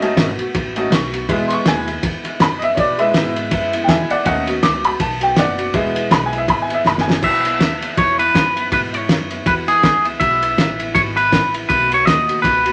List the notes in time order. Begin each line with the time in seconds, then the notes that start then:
Already playing: F#1
0.02 A3 B3 C#4 D#4 F#4, ride
0.17 G#1 B2 D#3 A3 B3 F#4, snare, ride
0.38 A3 B3 F#4, muted upright bass stroke, ride
0.55 A1 D#3 A3 B3 F#4, kick, ride
0.76 A3 B3 C#4 D#4 F#4, ride
0.91 B1 B2 D#3 A3 B3 F#4 C#6, snare, ride
1.14 A3 B3 F#4, ride
1.29 E2 B2 E3 G#3 B3 E4, kick, ride
1.48 G#3 B3 E4 C6, ride
1.53 E3 C#6
1.66 D#2 E2 B2 E3 G#3 B3 E4 G#5, snare, ride
1.87 E3 G#3 B3 E4, ride
2.01 E2 E3 G#3 B3 E4, kick, ride
2.24 E3 G#3 B3 E4, muted upright bass stroke, ride
2.39 E2 F#2 B2 E3 G#3 B3 E4 B5, snare, ride
2.59 G#3 B3 E4 D#5, ride
2.63 E3 E5
2.75 E2 B2 E3 G#3 B3 E4 C#5, kick, ride
2.79 D5
2.98 E3 G#3 B3 E4 B4 E5, ride
3.14 E2 G#2 B2 E3 G#3 B3 E4, snare, ride
3.35 E3 G#3 B3 E4, ride
3.51 F#2 E3 G#3 B3 E4, kick, ride
3.72 E3 G#3 B3 E4, ride
3.84 E2 G5
3.88 B2 E3 G#3 B3 E4 E5 G#5, snare, ride
4.09 E3 G#3 B3 E4 D5 F#5, muted upright bass stroke, ride
4.25 D#2 B2 D#3 A3 B3 C#4 D#4 F#4 F#5, kick, ride
4.47 A3 B3 F#4, ride
4.63 C#2 D#3 A3 B3 F#4 D6, snare, ride
4.84 A3 B3 F#4 B5, ride
4.99 B1 D#3 A3 B3 F#4 A5, kick, ride
5.20 A3 B3 F#4 G5, ride
5.36 F#1 B2 D#3 A3 B3 F#4 D5 F#5, snare, ride
5.58 A3 B3 F#4, ride
5.73 E1 E2 B2 E3 G#3 B3 E4, kick, ride
5.95 E3 G#3 B3 E4, ride
6.10 B1 E2 B2 E3 G#3 B3 E4 B5, snare, ride
6.26 G#5
6.31 E3 G#3 B3 E4, ride
6.38 E5
6.47 G#1 E3 G#3 B3 E4 B5, kick, ride
6.62 G#5
6.68 E3 G#3 B3 E4, ride
6.75 E5
6.84 F#1 E2 B2 E3 G#3 B3 E4 B5, snare
6.98 G#5, snare
7.06 E3 G#3 B3 E4
7.10 snare
7.21 B1 E2 B2 E3 G#3 B3 E4 E5, kick, crash
7.44 E3 G#3 B3 E4, ride
7.59 D#2 E3 G#3 B3 E4, snare, ride
7.81 E3 G#3 B3 E4, ride
7.97 E2 B2 E3 G#3 B3 E4 C#5, kick, ride
8.18 E3 G#3 B3 E4 B4, ride
8.34 F#2 E3 G#3 B3, kick, snare, ride
8.55 E3 G#3 B3 E4, ride
8.71 E2 G#2 B2 E3 G#3 B3 E4 B4, kick, ride
8.92 E3 G#3 B3 E4 C#5, ride
9.08 F#2 E3 G#3 B3 E4, snare, ride
9.30 E3 G#3 B3 E4, ride
9.46 E2 B2 E3 G#3 B3 E4 B4, kick, ride
9.67 E3 G#3 B3 E4 G#4, ride
9.82 C#2 E3 G#3 B3 E4, kick, snare, ride
10.04 E3 G#3 B3 E4, ride
10.20 B1 E2 B2 E3 G#3 B3 E4 E5, kick, ride
10.41 E3 G#3 B3 E4, ride
10.57 A1 E3 G#3 B3 E4, snare, ride
10.79 E3 G#3 B3 E4, ride
10.94 G#1 E2 B2 E3 G#3 B3 E4 C#5, kick, ride
11.16 E3 G#3 B3 E4 B4, ride
11.31 A1 E3 G#3 B3 E4, kick, snare, ride
11.54 E3 G#3 B3 E4, ride
11.69 B1 B2 D#3 A3 B3 F#4 B4, kick, ride
11.90 A3 B3 F#4 C#5, ride
12.05 D#2 D#3 A3 B3 F#4 D#5, snare, ride
12.28 A3 B3 F#4, ride
12.42 C#2 B2 D#3 A3 B3 F#4 B4, kick, ride
12.64 A3 B3 F#4, ride